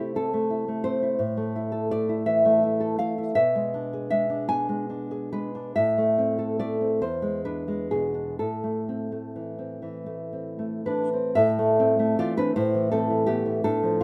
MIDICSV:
0, 0, Header, 1, 2, 480
1, 0, Start_track
1, 0, Key_signature, 0, "minor"
1, 0, Tempo, 708383
1, 806, Time_signature, 6, 3, 24, 8
1, 1781, Tempo, 753769
1, 3221, Tempo, 855920
1, 4661, Tempo, 949367
1, 6101, Tempo, 1048951
1, 6581, Tempo, 818554
1, 7061, Tempo, 733496
1, 8280, End_track
2, 0, Start_track
2, 0, Title_t, "Nylon-string guitar"
2, 0, Program_c, 0, 24
2, 0, Note_on_c, 0, 48, 57
2, 0, Note_on_c, 0, 57, 42
2, 0, Note_on_c, 0, 60, 47
2, 0, Note_on_c, 0, 64, 47
2, 0, Note_on_c, 0, 67, 61
2, 93, Note_off_c, 0, 67, 0
2, 98, Note_off_c, 0, 60, 0
2, 105, Note_on_c, 0, 60, 46
2, 106, Note_off_c, 0, 64, 0
2, 109, Note_on_c, 0, 69, 74
2, 218, Note_off_c, 0, 57, 0
2, 227, Note_on_c, 0, 57, 50
2, 342, Note_on_c, 0, 64, 46
2, 454, Note_off_c, 0, 57, 0
2, 462, Note_on_c, 0, 57, 40
2, 558, Note_off_c, 0, 69, 0
2, 567, Note_off_c, 0, 60, 0
2, 568, Note_on_c, 0, 72, 84
2, 575, Note_on_c, 0, 60, 49
2, 686, Note_off_c, 0, 64, 0
2, 694, Note_on_c, 0, 64, 45
2, 779, Note_off_c, 0, 48, 0
2, 805, Note_on_c, 0, 45, 59
2, 807, Note_off_c, 0, 60, 0
2, 808, Note_off_c, 0, 57, 0
2, 808, Note_off_c, 0, 64, 0
2, 929, Note_on_c, 0, 57, 49
2, 1054, Note_on_c, 0, 64, 46
2, 1164, Note_on_c, 0, 69, 56
2, 1261, Note_off_c, 0, 72, 0
2, 1290, Note_off_c, 0, 57, 0
2, 1296, Note_on_c, 0, 74, 88
2, 1298, Note_on_c, 0, 57, 49
2, 1409, Note_off_c, 0, 64, 0
2, 1417, Note_on_c, 0, 64, 55
2, 1529, Note_off_c, 0, 74, 0
2, 1532, Note_on_c, 0, 76, 86
2, 1535, Note_on_c, 0, 52, 49
2, 1653, Note_off_c, 0, 57, 0
2, 1661, Note_on_c, 0, 57, 51
2, 1778, Note_off_c, 0, 64, 0
2, 1786, Note_on_c, 0, 64, 50
2, 1885, Note_off_c, 0, 69, 0
2, 1892, Note_on_c, 0, 69, 51
2, 1991, Note_off_c, 0, 76, 0
2, 2004, Note_off_c, 0, 57, 0
2, 2009, Note_off_c, 0, 45, 0
2, 2009, Note_on_c, 0, 77, 91
2, 2012, Note_on_c, 0, 57, 50
2, 2125, Note_off_c, 0, 64, 0
2, 2133, Note_on_c, 0, 64, 50
2, 2237, Note_off_c, 0, 77, 0
2, 2242, Note_on_c, 0, 76, 94
2, 2245, Note_off_c, 0, 52, 0
2, 2246, Note_off_c, 0, 69, 0
2, 2248, Note_off_c, 0, 57, 0
2, 2248, Note_on_c, 0, 47, 69
2, 2250, Note_off_c, 0, 64, 0
2, 2371, Note_on_c, 0, 56, 49
2, 2489, Note_on_c, 0, 62, 52
2, 2611, Note_on_c, 0, 68, 54
2, 2704, Note_off_c, 0, 76, 0
2, 2717, Note_off_c, 0, 56, 0
2, 2721, Note_on_c, 0, 76, 86
2, 2725, Note_on_c, 0, 56, 55
2, 2836, Note_off_c, 0, 62, 0
2, 2843, Note_on_c, 0, 62, 54
2, 2955, Note_off_c, 0, 76, 0
2, 2960, Note_on_c, 0, 59, 47
2, 2964, Note_on_c, 0, 80, 95
2, 3085, Note_off_c, 0, 56, 0
2, 3093, Note_on_c, 0, 56, 53
2, 3218, Note_off_c, 0, 62, 0
2, 3225, Note_on_c, 0, 62, 51
2, 3338, Note_off_c, 0, 68, 0
2, 3344, Note_on_c, 0, 68, 51
2, 3443, Note_off_c, 0, 80, 0
2, 3461, Note_off_c, 0, 56, 0
2, 3465, Note_on_c, 0, 71, 83
2, 3468, Note_on_c, 0, 56, 51
2, 3584, Note_off_c, 0, 62, 0
2, 3590, Note_on_c, 0, 62, 51
2, 3688, Note_off_c, 0, 47, 0
2, 3701, Note_off_c, 0, 71, 0
2, 3707, Note_off_c, 0, 59, 0
2, 3707, Note_on_c, 0, 76, 86
2, 3709, Note_off_c, 0, 56, 0
2, 3711, Note_off_c, 0, 62, 0
2, 3712, Note_off_c, 0, 68, 0
2, 3712, Note_on_c, 0, 45, 67
2, 3831, Note_on_c, 0, 57, 54
2, 3945, Note_on_c, 0, 60, 50
2, 4060, Note_on_c, 0, 69, 52
2, 4160, Note_off_c, 0, 76, 0
2, 4174, Note_off_c, 0, 57, 0
2, 4177, Note_on_c, 0, 74, 82
2, 4180, Note_on_c, 0, 57, 50
2, 4291, Note_off_c, 0, 60, 0
2, 4298, Note_on_c, 0, 60, 47
2, 4397, Note_off_c, 0, 45, 0
2, 4406, Note_off_c, 0, 74, 0
2, 4413, Note_on_c, 0, 40, 54
2, 4414, Note_on_c, 0, 72, 78
2, 4416, Note_off_c, 0, 69, 0
2, 4417, Note_off_c, 0, 60, 0
2, 4418, Note_off_c, 0, 57, 0
2, 4529, Note_on_c, 0, 56, 48
2, 4650, Note_off_c, 0, 72, 0
2, 4657, Note_on_c, 0, 62, 45
2, 4657, Note_on_c, 0, 71, 66
2, 4766, Note_off_c, 0, 56, 0
2, 4772, Note_on_c, 0, 56, 42
2, 4882, Note_off_c, 0, 71, 0
2, 4890, Note_on_c, 0, 47, 43
2, 4890, Note_on_c, 0, 68, 73
2, 5001, Note_off_c, 0, 62, 0
2, 5007, Note_on_c, 0, 62, 42
2, 5118, Note_off_c, 0, 40, 0
2, 5127, Note_off_c, 0, 68, 0
2, 5133, Note_on_c, 0, 69, 68
2, 5135, Note_off_c, 0, 47, 0
2, 5136, Note_off_c, 0, 62, 0
2, 5137, Note_on_c, 0, 45, 52
2, 5138, Note_off_c, 0, 56, 0
2, 5257, Note_on_c, 0, 57, 44
2, 5384, Note_on_c, 0, 60, 40
2, 5495, Note_off_c, 0, 57, 0
2, 5501, Note_on_c, 0, 57, 41
2, 5621, Note_on_c, 0, 52, 40
2, 5731, Note_off_c, 0, 60, 0
2, 5737, Note_on_c, 0, 60, 39
2, 5851, Note_off_c, 0, 52, 0
2, 5857, Note_on_c, 0, 52, 39
2, 5972, Note_off_c, 0, 57, 0
2, 5978, Note_on_c, 0, 57, 43
2, 6105, Note_off_c, 0, 60, 0
2, 6111, Note_on_c, 0, 60, 41
2, 6225, Note_off_c, 0, 57, 0
2, 6230, Note_on_c, 0, 57, 36
2, 6330, Note_off_c, 0, 69, 0
2, 6349, Note_off_c, 0, 52, 0
2, 6354, Note_on_c, 0, 52, 42
2, 6354, Note_on_c, 0, 71, 71
2, 6360, Note_on_c, 0, 62, 57
2, 6473, Note_off_c, 0, 60, 0
2, 6477, Note_off_c, 0, 62, 0
2, 6479, Note_on_c, 0, 60, 41
2, 6562, Note_off_c, 0, 45, 0
2, 6573, Note_off_c, 0, 71, 0
2, 6580, Note_on_c, 0, 76, 102
2, 6583, Note_off_c, 0, 52, 0
2, 6585, Note_off_c, 0, 60, 0
2, 6585, Note_on_c, 0, 45, 78
2, 6586, Note_off_c, 0, 57, 0
2, 6587, Note_on_c, 0, 69, 77
2, 6716, Note_on_c, 0, 57, 61
2, 6839, Note_on_c, 0, 60, 60
2, 6948, Note_off_c, 0, 57, 0
2, 6955, Note_on_c, 0, 57, 61
2, 7040, Note_off_c, 0, 69, 0
2, 7041, Note_off_c, 0, 76, 0
2, 7068, Note_off_c, 0, 45, 0
2, 7071, Note_on_c, 0, 52, 62
2, 7071, Note_on_c, 0, 74, 99
2, 7076, Note_on_c, 0, 65, 76
2, 7181, Note_off_c, 0, 60, 0
2, 7183, Note_off_c, 0, 65, 0
2, 7187, Note_off_c, 0, 74, 0
2, 7189, Note_on_c, 0, 60, 59
2, 7193, Note_on_c, 0, 71, 98
2, 7201, Note_on_c, 0, 62, 69
2, 7305, Note_off_c, 0, 62, 0
2, 7307, Note_off_c, 0, 57, 0
2, 7307, Note_off_c, 0, 60, 0
2, 7309, Note_off_c, 0, 52, 0
2, 7309, Note_off_c, 0, 71, 0
2, 7314, Note_on_c, 0, 45, 72
2, 7314, Note_on_c, 0, 72, 92
2, 7318, Note_on_c, 0, 64, 73
2, 7436, Note_on_c, 0, 52, 58
2, 7534, Note_off_c, 0, 64, 0
2, 7539, Note_off_c, 0, 72, 0
2, 7546, Note_on_c, 0, 69, 92
2, 7551, Note_on_c, 0, 57, 60
2, 7554, Note_on_c, 0, 60, 67
2, 7660, Note_off_c, 0, 52, 0
2, 7668, Note_on_c, 0, 52, 53
2, 7770, Note_off_c, 0, 57, 0
2, 7771, Note_off_c, 0, 60, 0
2, 7772, Note_off_c, 0, 69, 0
2, 7775, Note_on_c, 0, 67, 91
2, 7778, Note_on_c, 0, 57, 63
2, 7783, Note_on_c, 0, 59, 71
2, 7893, Note_off_c, 0, 52, 0
2, 7901, Note_on_c, 0, 52, 55
2, 8004, Note_off_c, 0, 45, 0
2, 8004, Note_off_c, 0, 59, 0
2, 8007, Note_off_c, 0, 67, 0
2, 8018, Note_off_c, 0, 57, 0
2, 8020, Note_off_c, 0, 52, 0
2, 8021, Note_on_c, 0, 45, 75
2, 8022, Note_on_c, 0, 69, 97
2, 8027, Note_on_c, 0, 62, 72
2, 8145, Note_on_c, 0, 53, 55
2, 8248, Note_off_c, 0, 62, 0
2, 8252, Note_off_c, 0, 69, 0
2, 8260, Note_on_c, 0, 65, 80
2, 8280, Note_off_c, 0, 45, 0
2, 8280, Note_off_c, 0, 53, 0
2, 8280, Note_off_c, 0, 65, 0
2, 8280, End_track
0, 0, End_of_file